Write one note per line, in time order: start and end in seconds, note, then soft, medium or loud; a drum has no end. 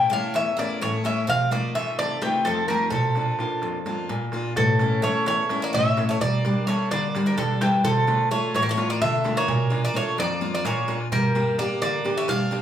0.00 0.11 A2 medium
0.00 0.11 C#4 soft
0.00 0.11 E4 medium
0.00 0.10 G5 medium
0.00 darbuka tek soft
0.10 0.49 A3 soft
0.10 0.49 C#4 soft
0.10 0.33 D4 medium
0.10 0.50 E4 soft
0.10 0.34 F5 medium
0.10 darbuka tek medium
0.34 0.81 E2 medium
0.34 0.56 C#4 medium
0.34 0.57 E5 loud
0.34 darbuka tek medium
0.57 0.96 A3 soft
0.57 0.80 A#3 medium
0.57 0.96 C#4 soft
0.57 0.96 E4 medium
0.57 0.81 D5 medium
0.57 darbuka tek medium
0.81 1.27 A2 medium
0.81 1.04 A3 medium
0.81 1.04 C#5 medium
0.81 darbuka tek medium
1.04 1.23 A3 medium
1.04 1.24 C#4 soft
1.04 1.27 C#4 medium
1.04 1.24 E4 soft
1.04 1.28 E5 medium
1.04 darbuka tek medium
1.27 1.74 F2 medium
1.27 1.50 C4 medium
1.27 1.51 F5 loud
1.27 darbuka dum loud
1.51 1.74 A3 soft
1.51 1.74 A#3 medium
1.51 1.74 D#4 soft
1.51 1.75 F4 medium
1.51 1.74 D5 medium
1.51 darbuka tek medium
1.64 darbuka tek soft
1.75 2.13 A3 soft
1.75 1.97 C#4 medium
1.75 2.13 D#4 soft
1.75 2.14 F4 medium
1.75 1.98 E5 medium
1.75 darbuka tek medium
1.99 2.45 C3 medium
1.99 2.21 A3 medium
1.99 2.21 D5 loud
1.99 darbuka tek medium
2.22 2.44 E3 medium
2.22 2.60 A3 medium
2.22 2.60 D#4 soft
2.22 2.60 F4 medium
2.22 2.44 G4 medium
2.22 darbuka tek medium
2.45 2.92 F2 medium
2.45 2.68 F3 medium
2.45 2.67 A4 medium
2.45 darbuka tek medium
2.68 2.92 G3 medium
2.68 2.88 A3 soft
2.68 2.89 D#4 soft
2.68 2.89 F4 soft
2.68 2.90 A#4 medium
2.68 darbuka tek medium
2.90 3.38 A#2 medium
2.90 4.06 F3 medium
2.90 4.05 A4 medium
2.90 darbuka dum loud
3.04 darbuka tek soft
3.15 3.39 A#3 soft
3.15 3.39 D4 soft
3.15 3.39 F4 soft
3.15 darbuka tek medium
3.39 3.77 A#3 soft
3.39 3.78 D4 soft
3.39 3.77 F4 medium
3.39 darbuka tek medium
3.51 darbuka tek soft
3.62 4.08 F2 medium
3.62 darbuka tek medium
3.74 darbuka tek soft
3.86 4.24 A#3 soft
3.86 4.24 D4 soft
3.86 4.24 F4 medium
3.86 darbuka tek medium
4.09 4.55 A#2 medium
4.09 darbuka tek medium
4.21 darbuka tek soft
4.32 4.52 A#3 soft
4.32 4.52 D4 soft
4.32 4.53 F4 medium
4.32 darbuka tek medium
4.44 darbuka tek soft
4.56 5.03 A2 medium
4.56 5.01 E3 medium
4.56 5.00 A4 medium
4.56 darbuka dum loud
4.68 darbuka tek soft
4.79 5.02 A3 soft
4.79 5.03 C#4 soft
4.79 5.03 E4 soft
4.79 darbuka tek medium
5.02 5.25 A3 medium
5.02 5.41 A3 soft
5.02 5.41 C#4 soft
5.02 5.42 E4 medium
5.02 5.25 C#5 medium
5.02 darbuka tek medium
5.26 5.73 E2 medium
5.26 5.59 A3 medium
5.26 5.63 C#5 medium
5.26 darbuka tek medium
5.39 darbuka tek soft
5.49 5.88 A3 medium
5.49 5.88 C#4 soft
5.49 5.88 E4 medium
5.49 darbuka tek medium
5.62 5.72 A#3 medium
5.62 5.74 D5 medium
5.62 darbuka tek soft
5.73 6.20 A2 medium
5.73 6.06 C#4 medium
5.73 6.07 E5 medium
5.73 darbuka tek medium
5.73 darbuka dum medium
5.97 6.16 A3 soft
5.97 6.16 C#4 soft
5.97 6.16 E4 medium
5.97 darbuka tek medium
6.09 6.20 A3 medium
6.09 6.21 C#5 medium
6.09 darbuka tek soft
6.21 6.67 G2 medium
6.21 6.64 A#3 medium
6.21 6.67 D5 medium
6.21 darbuka dum loud
6.33 darbuka tek soft
6.45 6.67 G3 soft
6.45 6.68 A#3 soft
6.45 6.68 D4 medium
6.45 darbuka tek medium
6.67 7.05 G3 medium
6.67 6.90 A3 medium
6.67 7.06 A#3 soft
6.67 7.06 D4 soft
6.67 6.91 C#5 medium
6.67 darbuka tek medium
6.91 7.37 D3 medium
6.91 7.24 A#3 medium
6.91 7.24 D5 medium
6.91 darbuka tek medium
7.03 darbuka tek soft
7.15 7.52 G3 medium
7.15 7.52 A#3 soft
7.15 7.53 D4 medium
7.15 darbuka tek medium
7.26 7.37 G3 medium
7.26 7.37 A#4 medium
7.26 darbuka tek soft
7.38 7.83 G2 medium
7.38 7.60 D3 medium
7.38 7.62 A4 medium
7.38 darbuka tek medium
7.38 darbuka dum medium
7.61 7.83 E3 medium
7.61 7.80 G3 soft
7.61 7.80 A#3 soft
7.61 7.81 D4 medium
7.61 7.83 G4 medium
7.61 darbuka tek medium
7.73 darbuka tek soft
7.84 8.30 D3 medium
7.84 8.28 F3 medium
7.84 8.28 A4 medium
7.84 darbuka dum loud
7.97 darbuka tek soft
8.07 8.30 A3 soft
8.07 8.30 D4 soft
8.07 8.30 F4 soft
8.07 darbuka tek medium
8.31 8.69 A3 medium
8.31 8.53 A3 medium
8.31 8.68 D4 soft
8.31 8.69 F4 soft
8.31 8.54 C#5 medium
8.54 9.00 A2 medium
8.54 8.62 A3 medium
8.54 8.62 C#5 medium
8.54 darbuka tek medium
8.62 8.69 G3 medium
8.62 8.69 A#4 medium
8.62 darbuka tek soft
8.69 8.89 A3 medium
8.69 8.90 C#5 medium
8.77 9.15 A3 soft
8.77 9.15 D4 soft
8.77 9.15 F4 medium
8.77 darbuka tek medium
8.90 9.01 A#3 medium
8.90 9.01 D5 medium
8.90 darbuka tek soft
9.01 9.47 D3 medium
9.01 9.34 A3 medium
9.01 9.34 E5 medium
9.01 darbuka tek medium
9.01 darbuka dum medium
9.24 9.43 A3 medium
9.24 9.44 D4 soft
9.24 9.44 F4 medium
9.24 darbuka tek medium
9.37 9.80 A#3 medium
9.37 9.80 C#5 medium
9.37 darbuka tek soft
9.48 9.94 A#2 medium
9.48 darbuka dum loud
9.70 9.93 A#3 soft
9.70 9.93 D4 soft
9.70 9.94 F4 soft
9.70 darbuka tek medium
9.83 9.95 A#3 medium
9.83 9.95 D5 medium
9.83 darbuka tek soft
9.94 10.18 A3 medium
9.94 10.32 A#3 soft
9.94 10.32 D4 soft
9.94 10.32 F4 medium
9.94 10.19 C#5 medium
10.06 darbuka tek soft
10.18 10.64 F2 medium
10.18 10.52 A#3 medium
10.18 10.53 D5 loud
10.18 darbuka tek medium
10.30 darbuka tek soft
10.41 10.79 A#3 soft
10.41 10.79 D4 medium
10.41 10.79 F4 medium
10.55 10.64 A#3 medium
10.55 10.65 D5 medium
10.65 11.10 A#2 medium
10.65 10.98 A#3 medium
10.65 10.98 C#5 medium
10.65 darbuka tek medium
10.88 11.07 A#3 soft
10.88 11.07 D4 soft
10.88 11.07 F4 soft
10.88 darbuka tek medium
11.01 darbuka tek soft
11.12 11.57 G2 medium
11.12 11.56 G3 medium
11.12 11.56 A#4 medium
11.12 darbuka dum loud
11.24 darbuka tek soft
11.35 11.58 A#3 soft
11.35 11.58 D4 soft
11.35 11.59 G4 medium
11.35 darbuka tek medium
11.59 11.96 A#3 soft
11.59 11.81 A#3 medium
11.59 11.96 D4 soft
11.59 11.97 G4 medium
11.59 11.81 D5 medium
11.59 darbuka tek medium
11.82 12.27 D3 medium
11.82 12.15 A#3 medium
11.82 12.17 D5 loud
11.82 darbuka tek medium
11.94 darbuka tek soft
12.04 12.42 A#3 soft
12.04 12.43 D4 soft
12.04 12.43 G4 medium
12.04 darbuka tek medium
12.17 12.28 C#4 medium
12.17 12.29 E5 medium
12.17 darbuka tek soft
12.28 12.62 G2 medium
12.28 12.62 D4 medium
12.28 12.62 F5 loud
12.28 darbuka tek medium
12.28 darbuka dum medium
12.51 12.62 A#3 soft
12.51 12.62 D4 soft
12.51 12.62 G4 medium
12.51 darbuka tek medium